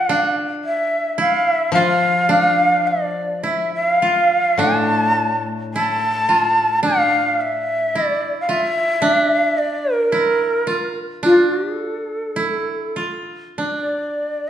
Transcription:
Already playing: koto E3 F4, shakuhachi F5
0.09 koto D4
0.64 shakuhachi E5
1.18 koto E4, shakuhachi F5
1.49 shakuhachi E5
1.72 koto F3 F4, shakuhachi F5
2.29 koto D4
2.87 shakuhachi D5
3.43 koto E4, shakuhachi E5
3.74 shakuhachi E5
3.86 shakuhachi F5
4.02 koto F4
4.58 koto A2 D4, shakuhachi A5
5.74 koto E4, shakuhachi A5
6.29 koto F4
6.83 koto D4, shakuhachi F5
7.41 shakuhachi E5
7.94 koto E4, shakuhachi D#5
8.06 shakuhachi D5
8.41 shakuhachi F5
8.49 koto F4, shakuhachi E5
9.02 koto D4
9.58 shakuhachi D5
9.94 shakuhachi A#4
10.12 koto E4, shakuhachi A#4
10.67 koto F4
11.23 koto D4, shakuhachi F4
11.80 shakuhachi A4
12.36 koto E4
12.96 koto F4
13.58 koto D4, shakuhachi D5

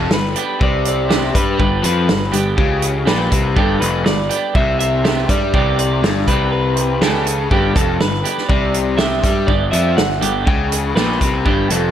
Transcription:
Already playing: overdriven electric guitar F2, clean electric guitar A4
0.11 picked electric bass G1, overdriven electric guitar G2, clean electric guitar B4, muted overdriven electric guitar stroke, snare
0.36 overdriven electric guitar B3 D4 G4, closed hi-hat
0.60 picked electric bass C2, overdriven electric guitar C3, clean electric guitar D5, muted overdriven electric guitar stroke, kick
0.85 clean electric guitar D5, muted overdriven electric guitar stroke, closed hi-hat
1.09 overdriven electric guitar B3 D4 G4, snare
1.34 picked electric bass G2, overdriven electric guitar G3, clean electric guitar B4, muted overdriven electric guitar stroke, kick, closed hi-hat
1.57 picked electric bass G1, overdriven electric guitar G2 B3 D4 G4, clean electric guitar B4, kick
1.82 picked electric bass F2, overdriven electric guitar F3, clean electric guitar B4, muted overdriven electric guitar stroke, closed hi-hat
2.08 picked electric bass G1, overdriven electric guitar G2, muted overdriven electric guitar stroke, snare
2.32 picked electric bass G1, overdriven electric guitar G2 B3 D4 G4, clean electric guitar G4, closed hi-hat
2.57 picked electric bass C#2, overdriven electric guitar C#3, clean electric guitar G4, muted overdriven electric guitar stroke, kick
2.82 muted overdriven electric guitar stroke, closed hi-hat
3.05 picked electric bass A#1, overdriven electric guitar A#2 B3 D4 G4, clean electric guitar B4, snare
3.30 picked electric bass C2, overdriven electric guitar C3, muted overdriven electric guitar stroke, kick, closed hi-hat
3.56 picked electric bass G1, overdriven electric guitar G2 B3 D4 G4, clean electric guitar A4, kick
3.80 picked electric bass F1, overdriven electric guitar F2, clean electric guitar B4, muted overdriven electric guitar stroke, closed hi-hat
4.05 picked electric bass G1, overdriven electric guitar G2, clean electric guitar D5, muted overdriven electric guitar stroke, snare
4.29 overdriven electric guitar B3 D4 G4, closed hi-hat
4.54 picked electric bass C2, overdriven electric guitar C3, clean electric guitar E5, muted overdriven electric guitar stroke, kick
4.79 clean electric guitar E5, muted overdriven electric guitar stroke, closed hi-hat
5.04 overdriven electric guitar B3 D4 G4, snare
5.28 picked electric bass G2, overdriven electric guitar G3, clean electric guitar D5, muted overdriven electric guitar stroke, kick, snare, closed hi-hat
5.53 picked electric bass C2, overdriven electric guitar C3 B3 D4 G4, clean electric guitar D5, kick
5.79 clean electric guitar D5, muted overdriven electric guitar stroke, closed hi-hat
6.02 picked electric bass G1, overdriven electric guitar G2, muted overdriven electric guitar stroke, snare
6.27 picked electric bass C2, overdriven electric guitar C3 B3 D4 G4, clean electric guitar B4, kick, closed hi-hat
6.52 clean electric guitar B4, muted overdriven electric guitar stroke
6.76 muted overdriven electric guitar stroke, closed hi-hat
7.01 picked electric bass C#2, overdriven electric guitar C#3 B3 D4 G4, clean electric guitar A4, snare
7.27 muted overdriven electric guitar stroke, closed hi-hat
7.51 picked electric bass G1, overdriven electric guitar G2 B3 D4 G4, clean electric guitar G4, kick
7.75 picked electric bass F1, overdriven electric guitar F2, clean electric guitar A4, muted overdriven electric guitar stroke, kick, closed hi-hat
8.00 picked electric bass G1, overdriven electric guitar G2, clean electric guitar B4, muted overdriven electric guitar stroke, snare
8.24 overdriven electric guitar B3 D4 G4, closed hi-hat
8.38 snare
8.49 picked electric bass C2, overdriven electric guitar C3, clean electric guitar D5, muted overdriven electric guitar stroke, kick
8.73 muted overdriven electric guitar stroke, closed hi-hat
8.97 overdriven electric guitar B3 D4 G4, clean electric guitar E5, snare
9.23 picked electric bass G2, overdriven electric guitar G3, muted overdriven electric guitar stroke, kick, snare, closed hi-hat
9.47 picked electric bass G1, overdriven electric guitar G2 B3 D4 G4, clean electric guitar D5, kick
9.71 picked electric bass F2, overdriven electric guitar F3, clean electric guitar E5, muted overdriven electric guitar stroke, closed hi-hat
9.97 picked electric bass G1, overdriven electric guitar G2, clean electric guitar F#5, muted overdriven electric guitar stroke, snare
10.21 picked electric bass G1, overdriven electric guitar G2 B3 D4 G4, closed hi-hat
10.47 picked electric bass C#2, overdriven electric guitar C#3, clean electric guitar G5, muted overdriven electric guitar stroke, kick
10.71 muted overdriven electric guitar stroke, closed hi-hat
10.95 picked electric bass A#1, overdriven electric guitar A#2 B3 D4 G4, clean electric guitar B4, snare
11.21 picked electric bass C2, overdriven electric guitar C3, muted overdriven electric guitar stroke, kick, snare, closed hi-hat
11.45 picked electric bass G1, overdriven electric guitar G2 B3 D4 G4, clean electric guitar G4, kick
11.69 picked electric bass F1, overdriven electric guitar F2, clean electric guitar A4, muted overdriven electric guitar stroke, closed hi-hat

